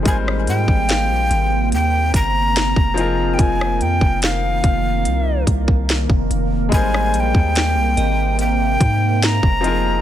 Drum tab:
HH |x-x-x-x-x-x-x-x-|x-x-x-x-x-x-x-x-|x-x-x-x-x-x-x-x-|
SD |-r--o-------o---|-r--o-------o---|-r--o-------o---|
BD |o--o------o--o--|o--o--o---oo-o--|o--o------o--o--|